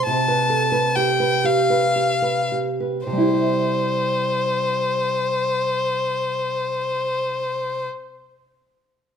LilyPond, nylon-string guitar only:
\new Staff \with { instrumentName = "Nylon-string guitar" } { \time 6/8 \key c \major \tempo 4. = 39 c16 b'16 a'16 b'16 g'16 b'16 g'16 b'16 g'16 b'16 g'16 b'16 | <c g e' g' c'' e''>2.~ | <c g e' g' c'' e''>2. | }